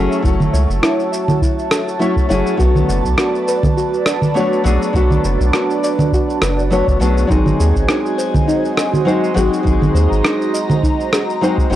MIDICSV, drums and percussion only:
0, 0, Header, 1, 2, 480
1, 0, Start_track
1, 0, Tempo, 588235
1, 196, Time_signature, 4, 2, 24, 8
1, 9594, End_track
2, 0, Start_track
2, 0, Title_t, "Drums"
2, 97, Note_on_c, 9, 82, 32
2, 179, Note_off_c, 9, 82, 0
2, 195, Note_on_c, 9, 36, 117
2, 204, Note_on_c, 9, 82, 42
2, 276, Note_off_c, 9, 36, 0
2, 285, Note_off_c, 9, 82, 0
2, 328, Note_on_c, 9, 64, 51
2, 336, Note_on_c, 9, 82, 21
2, 410, Note_off_c, 9, 64, 0
2, 418, Note_off_c, 9, 82, 0
2, 441, Note_on_c, 9, 82, 73
2, 523, Note_off_c, 9, 82, 0
2, 576, Note_on_c, 9, 82, 32
2, 657, Note_off_c, 9, 82, 0
2, 677, Note_on_c, 9, 37, 80
2, 685, Note_on_c, 9, 82, 47
2, 759, Note_off_c, 9, 37, 0
2, 767, Note_off_c, 9, 82, 0
2, 812, Note_on_c, 9, 82, 21
2, 894, Note_off_c, 9, 82, 0
2, 923, Note_on_c, 9, 82, 73
2, 1005, Note_off_c, 9, 82, 0
2, 1046, Note_on_c, 9, 64, 73
2, 1054, Note_on_c, 9, 82, 34
2, 1128, Note_off_c, 9, 64, 0
2, 1136, Note_off_c, 9, 82, 0
2, 1154, Note_on_c, 9, 36, 102
2, 1165, Note_on_c, 9, 82, 44
2, 1235, Note_off_c, 9, 36, 0
2, 1247, Note_off_c, 9, 82, 0
2, 1295, Note_on_c, 9, 82, 20
2, 1377, Note_off_c, 9, 82, 0
2, 1396, Note_on_c, 9, 37, 81
2, 1404, Note_on_c, 9, 82, 77
2, 1478, Note_off_c, 9, 37, 0
2, 1486, Note_off_c, 9, 82, 0
2, 1535, Note_on_c, 9, 82, 31
2, 1617, Note_off_c, 9, 82, 0
2, 1642, Note_on_c, 9, 82, 42
2, 1724, Note_off_c, 9, 82, 0
2, 1764, Note_on_c, 9, 36, 102
2, 1774, Note_on_c, 9, 82, 22
2, 1846, Note_off_c, 9, 36, 0
2, 1856, Note_off_c, 9, 82, 0
2, 1880, Note_on_c, 9, 82, 68
2, 1962, Note_off_c, 9, 82, 0
2, 2012, Note_on_c, 9, 82, 33
2, 2094, Note_off_c, 9, 82, 0
2, 2114, Note_on_c, 9, 36, 120
2, 2121, Note_on_c, 9, 82, 43
2, 2195, Note_off_c, 9, 36, 0
2, 2202, Note_off_c, 9, 82, 0
2, 2248, Note_on_c, 9, 64, 53
2, 2256, Note_on_c, 9, 82, 20
2, 2329, Note_off_c, 9, 64, 0
2, 2337, Note_off_c, 9, 82, 0
2, 2361, Note_on_c, 9, 82, 74
2, 2442, Note_off_c, 9, 82, 0
2, 2485, Note_on_c, 9, 36, 59
2, 2493, Note_on_c, 9, 82, 31
2, 2566, Note_off_c, 9, 36, 0
2, 2574, Note_off_c, 9, 82, 0
2, 2593, Note_on_c, 9, 37, 76
2, 2601, Note_on_c, 9, 82, 47
2, 2674, Note_off_c, 9, 37, 0
2, 2682, Note_off_c, 9, 82, 0
2, 2733, Note_on_c, 9, 82, 21
2, 2815, Note_off_c, 9, 82, 0
2, 2840, Note_on_c, 9, 82, 75
2, 2922, Note_off_c, 9, 82, 0
2, 2964, Note_on_c, 9, 36, 103
2, 2965, Note_on_c, 9, 64, 74
2, 2973, Note_on_c, 9, 82, 33
2, 3046, Note_off_c, 9, 36, 0
2, 3046, Note_off_c, 9, 64, 0
2, 3054, Note_off_c, 9, 82, 0
2, 3083, Note_on_c, 9, 82, 39
2, 3164, Note_off_c, 9, 82, 0
2, 3213, Note_on_c, 9, 82, 20
2, 3294, Note_off_c, 9, 82, 0
2, 3312, Note_on_c, 9, 37, 77
2, 3320, Note_on_c, 9, 82, 79
2, 3394, Note_off_c, 9, 37, 0
2, 3402, Note_off_c, 9, 82, 0
2, 3442, Note_on_c, 9, 64, 55
2, 3450, Note_on_c, 9, 82, 30
2, 3523, Note_off_c, 9, 64, 0
2, 3531, Note_off_c, 9, 82, 0
2, 3559, Note_on_c, 9, 82, 44
2, 3641, Note_off_c, 9, 82, 0
2, 3694, Note_on_c, 9, 82, 22
2, 3775, Note_off_c, 9, 82, 0
2, 3801, Note_on_c, 9, 82, 68
2, 3883, Note_off_c, 9, 82, 0
2, 3934, Note_on_c, 9, 82, 34
2, 4016, Note_off_c, 9, 82, 0
2, 4035, Note_on_c, 9, 36, 117
2, 4040, Note_on_c, 9, 82, 41
2, 4116, Note_off_c, 9, 36, 0
2, 4122, Note_off_c, 9, 82, 0
2, 4167, Note_on_c, 9, 64, 51
2, 4175, Note_on_c, 9, 82, 20
2, 4249, Note_off_c, 9, 64, 0
2, 4257, Note_off_c, 9, 82, 0
2, 4278, Note_on_c, 9, 82, 69
2, 4360, Note_off_c, 9, 82, 0
2, 4414, Note_on_c, 9, 82, 31
2, 4496, Note_off_c, 9, 82, 0
2, 4515, Note_on_c, 9, 37, 72
2, 4523, Note_on_c, 9, 82, 44
2, 4597, Note_off_c, 9, 37, 0
2, 4605, Note_off_c, 9, 82, 0
2, 4654, Note_on_c, 9, 82, 21
2, 4736, Note_off_c, 9, 82, 0
2, 4762, Note_on_c, 9, 82, 78
2, 4843, Note_off_c, 9, 82, 0
2, 4886, Note_on_c, 9, 64, 75
2, 4894, Note_on_c, 9, 82, 33
2, 4968, Note_off_c, 9, 64, 0
2, 4976, Note_off_c, 9, 82, 0
2, 4996, Note_on_c, 9, 36, 101
2, 5006, Note_on_c, 9, 82, 41
2, 5077, Note_off_c, 9, 36, 0
2, 5088, Note_off_c, 9, 82, 0
2, 5139, Note_on_c, 9, 82, 21
2, 5220, Note_off_c, 9, 82, 0
2, 5236, Note_on_c, 9, 37, 75
2, 5244, Note_on_c, 9, 82, 76
2, 5317, Note_off_c, 9, 37, 0
2, 5325, Note_off_c, 9, 82, 0
2, 5376, Note_on_c, 9, 82, 32
2, 5458, Note_off_c, 9, 82, 0
2, 5482, Note_on_c, 9, 82, 43
2, 5564, Note_off_c, 9, 82, 0
2, 5607, Note_on_c, 9, 36, 100
2, 5616, Note_on_c, 9, 82, 21
2, 5689, Note_off_c, 9, 36, 0
2, 5698, Note_off_c, 9, 82, 0
2, 5722, Note_on_c, 9, 82, 67
2, 5803, Note_off_c, 9, 82, 0
2, 5853, Note_on_c, 9, 82, 33
2, 5934, Note_off_c, 9, 82, 0
2, 5956, Note_on_c, 9, 36, 110
2, 5963, Note_on_c, 9, 82, 41
2, 6037, Note_off_c, 9, 36, 0
2, 6045, Note_off_c, 9, 82, 0
2, 6087, Note_on_c, 9, 64, 53
2, 6095, Note_on_c, 9, 82, 19
2, 6168, Note_off_c, 9, 64, 0
2, 6176, Note_off_c, 9, 82, 0
2, 6203, Note_on_c, 9, 82, 68
2, 6284, Note_off_c, 9, 82, 0
2, 6327, Note_on_c, 9, 36, 57
2, 6333, Note_on_c, 9, 82, 30
2, 6408, Note_off_c, 9, 36, 0
2, 6415, Note_off_c, 9, 82, 0
2, 6434, Note_on_c, 9, 37, 71
2, 6442, Note_on_c, 9, 82, 44
2, 6515, Note_off_c, 9, 37, 0
2, 6523, Note_off_c, 9, 82, 0
2, 6576, Note_on_c, 9, 82, 21
2, 6658, Note_off_c, 9, 82, 0
2, 6682, Note_on_c, 9, 82, 73
2, 6763, Note_off_c, 9, 82, 0
2, 6808, Note_on_c, 9, 36, 97
2, 6808, Note_on_c, 9, 64, 77
2, 6816, Note_on_c, 9, 82, 32
2, 6890, Note_off_c, 9, 36, 0
2, 6890, Note_off_c, 9, 64, 0
2, 6898, Note_off_c, 9, 82, 0
2, 6925, Note_on_c, 9, 82, 39
2, 7007, Note_off_c, 9, 82, 0
2, 7058, Note_on_c, 9, 82, 20
2, 7139, Note_off_c, 9, 82, 0
2, 7159, Note_on_c, 9, 37, 67
2, 7167, Note_on_c, 9, 82, 74
2, 7241, Note_off_c, 9, 37, 0
2, 7249, Note_off_c, 9, 82, 0
2, 7291, Note_on_c, 9, 64, 49
2, 7299, Note_on_c, 9, 82, 28
2, 7372, Note_off_c, 9, 64, 0
2, 7380, Note_off_c, 9, 82, 0
2, 7408, Note_on_c, 9, 82, 41
2, 7489, Note_off_c, 9, 82, 0
2, 7539, Note_on_c, 9, 82, 21
2, 7621, Note_off_c, 9, 82, 0
2, 7646, Note_on_c, 9, 82, 62
2, 7727, Note_off_c, 9, 82, 0
2, 7779, Note_on_c, 9, 82, 32
2, 7861, Note_off_c, 9, 82, 0
2, 7877, Note_on_c, 9, 36, 109
2, 7887, Note_on_c, 9, 82, 41
2, 7959, Note_off_c, 9, 36, 0
2, 7969, Note_off_c, 9, 82, 0
2, 8012, Note_on_c, 9, 64, 52
2, 8020, Note_on_c, 9, 82, 19
2, 8094, Note_off_c, 9, 64, 0
2, 8102, Note_off_c, 9, 82, 0
2, 8125, Note_on_c, 9, 82, 68
2, 8207, Note_off_c, 9, 82, 0
2, 8262, Note_on_c, 9, 82, 30
2, 8343, Note_off_c, 9, 82, 0
2, 8360, Note_on_c, 9, 37, 75
2, 8368, Note_on_c, 9, 82, 40
2, 8442, Note_off_c, 9, 37, 0
2, 8450, Note_off_c, 9, 82, 0
2, 8499, Note_on_c, 9, 82, 19
2, 8581, Note_off_c, 9, 82, 0
2, 8605, Note_on_c, 9, 82, 76
2, 8686, Note_off_c, 9, 82, 0
2, 8729, Note_on_c, 9, 64, 75
2, 8737, Note_on_c, 9, 82, 32
2, 8811, Note_off_c, 9, 64, 0
2, 8819, Note_off_c, 9, 82, 0
2, 8837, Note_on_c, 9, 36, 93
2, 8849, Note_on_c, 9, 82, 39
2, 8919, Note_off_c, 9, 36, 0
2, 8930, Note_off_c, 9, 82, 0
2, 8980, Note_on_c, 9, 82, 19
2, 9061, Note_off_c, 9, 82, 0
2, 9080, Note_on_c, 9, 37, 73
2, 9088, Note_on_c, 9, 82, 73
2, 9162, Note_off_c, 9, 37, 0
2, 9170, Note_off_c, 9, 82, 0
2, 9218, Note_on_c, 9, 82, 29
2, 9300, Note_off_c, 9, 82, 0
2, 9329, Note_on_c, 9, 82, 41
2, 9411, Note_off_c, 9, 82, 0
2, 9446, Note_on_c, 9, 36, 99
2, 9460, Note_on_c, 9, 82, 20
2, 9528, Note_off_c, 9, 36, 0
2, 9542, Note_off_c, 9, 82, 0
2, 9568, Note_on_c, 9, 82, 63
2, 9594, Note_off_c, 9, 82, 0
2, 9594, End_track
0, 0, End_of_file